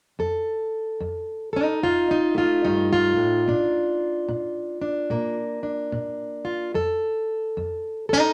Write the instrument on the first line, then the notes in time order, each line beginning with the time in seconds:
steel-string acoustic guitar
0.19 F2 A4
1.00 F2
1.53 D#4 A4
1.83 F2 F4
2.11 D#4
2.35 A3 F4
2.65 G2 D#4
2.93 F4
3.16 A2
3.48 A#2 D4
4.29 A#2
4.81 D4
5.10 A#2 A#3
5.63 D4
5.92 A#2
6.45 F4
6.74 F2 A4
7.57 F2
8.09 D#4 A4